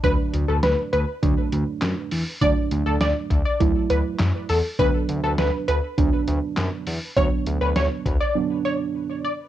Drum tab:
HH |xxxxxxxo|xxxxxxxo|xxxxxxxo|xxxx----|
CP |------x-|------x-|------x-|--------|
SD |--o---o-|--o---o-|--o---o-|--o-----|
BD |o---o---|o--oo---|o---o---|o--o----|